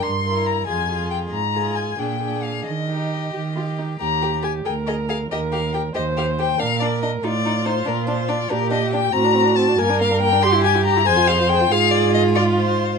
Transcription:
X:1
M:6/8
L:1/16
Q:3/8=93
K:Eb
V:1 name="Violin"
c'4 b2 a4 g2 | b4 a2 g4 f2 | e8- e2 z2 | b4 a2 g2 e2 f2 |
e2 f2 g2 e2 f2 g2 | f2 d2 e2 d4 c2 | B2 c2 d2 B2 e2 g2 | b4 =a2 _a2 f2 g2 |
c'2 a2 b2 a2 f2 g2 | f2 d2 e2 d2 c4 |]
V:2 name="Viola"
z2 =E4 F2 F4 | z2 F4 D2 D4 | z2 E4 G2 F2 E2 | G6 B6 |
B6 c6 | B6 F6- | F6 G6 | ^F6 B6 |
G6 c6 | A6 F6 |]
V:3 name="Violin"
z2 B4 A2 A4 | z2 A4 A2 A4 | z2 G6 G4 | G2 G2 G2 A2 A2 A2 |
G2 G2 G2 G2 G2 G2 | D2 D2 D2 E2 E2 E2 | D2 D2 D2 D2 D2 D2 | C D C D C D B, D B, D B, D |
G =E G E G E A F A F A F | F12 |]
V:4 name="Cello" clef=bass
G,,6 F,,6 | A,,6 B,,6 | E,6 E,6 | E,,6 D,,6 |
E,,6 E,,6 | B,,6 =A,,6 | B,,6 B,,6 | =A,,6 G,,6- |
G,,6 F,,6 | A,,12 |]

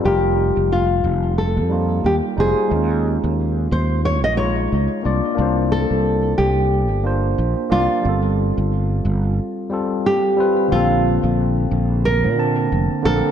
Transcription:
X:1
M:4/4
L:1/16
Q:"Swing 16ths" 1/4=90
K:Gm
V:1 name="Nylon-string guitar"
G4 F4 A4 G2 _A2- | _A6 c2 _d e d4 z2 | z2 A4 G6 z2 F2- | F12 G4 |
[K:Bblyd] F8 B6 A2 |]
V:2 name="Tine electric piano"
[G,EFB]8- [G,EFB]2 [G,B,EF]4 [G,EFc]2 | [_A,_DEF]8- [A,DEF]2 [A,EF_d]4 [B,=DF=d]2 | [B,DFc]8- [B,DFc]2 [B,DFc]4 [B,DFd]2 | [G,CFA]8- [G,CFA]2 [G,CFA]4 [G,CF=B]2 |
[K:Bblyd] [D,B,CA]8- [D,B,CA]2 [D,B,Ca]4 [D,B,CB]2 |]
V:3 name="Fretless electric bass" clef=bass
F,,,3 F,,,3 F,,,3 F,,3 E,, z F,,, z | E,,3 E,,3 E,,3 B,,,3 _D,, z C,, z | C,,3 C,,3 C,,3 G,,,3 B,,, z C,, z | G,,,3 G,,,3 G,,,2 z8 |
[K:Bblyd] B,,,3 B,,,3 B,,,3 B,,3 F,,, z B,,, z |]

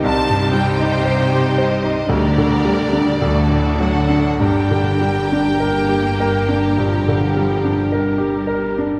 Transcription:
X:1
M:4/4
L:1/16
Q:1/4=53
K:Gm
V:1 name="Violin section"
a2 g4 e2 d6 ^f2 | g12 z4 |]
V:2 name="Violin section"
[Gc]8 [GB]4 [^FA]4 | [GB]16 |]
V:3 name="Grand piano"
C,, G,, G, E c G c E D,, D, G, D D,, A,, ^F, D | G,, D, G, D B G B D G,, D, G, D B G B D |]
V:4 name="Viola section"
[G,E]8 [G,D]4 [A,D]4 | [G,D]4 B,4 F,4 G,4 |]
V:5 name="Cello section" clef=bass
C,8 D,4 D,4 | G,,16 |]
V:6 name="Double bass section" clef=bass
C,,8 D,,4 D,,4 | G,,,16 |]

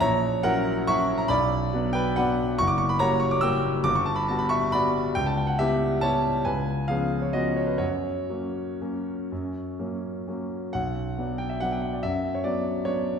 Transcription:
X:1
M:3/4
L:1/16
Q:1/4=139
K:Bm
V:1 name="Grand piano"
[c^a]4 [^Af]4 [ec']3 a | [db]6 [Bg]2 [Bf]4 | c' d' c' b [c^a]2 c' d' [ge']4 | d' c' a b a b [ec']2 [db]4 |
g a g f [Ge]4 [ca]4 | [B^g]4 [^G^e]3 c [F^d]2 c B | [Fc]12- | [Fc]8 z4 |
f6 g e f g f d | e3 c d4 c4 |]
V:2 name="Grand piano"
^A,,,4 [F,CE]4 [F,CE]4 | B,,,4 [F,B,D]4 [F,B,D]4 | F,,,4 [G,^A,F]4 [G,A,F]4 | G,,,4 [G,B,F]4 [G,B,F]4 |
C,,4 [G,B,E]4 [G,B,E]4 | C,,4 [^E,B,C]4 [E,B,C]4 | F,,4 [F,^A,C]4 [F,A,C]4 | F,,4 [F,^A,C]4 [F,A,C]4 |
B,,,4 [F,B,D]4 [F,B,D]4 | F,,4 [F,B,D]4 [F,B,D]4 |]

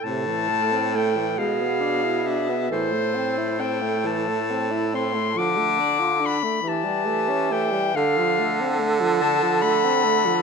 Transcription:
X:1
M:6/8
L:1/16
Q:3/8=46
K:Am
V:1 name="Clarinet"
a4 g2 f4 e2 | c4 g2 a4 c'2 | d'4 b2 a4 g2 | f4 z2 a2 b4 |]
V:2 name="Clarinet"
A6 ^G6 | A12- | A4 z2 G6 | A12 |]
V:3 name="Tenor saxophone"
C, E, A, C A, E, ^G, B, D E D B, | E, A, C E C A, E, A, C E C A, | F, A, D F D A, E, G, A, ^C A, G, | D, F, A, C A, F, D, F, A, C A, F, |]
V:4 name="Baritone saxophone" clef=bass
A,,6 B,,6 | A,,12 | D,4 z2 E,6 | D,12 |]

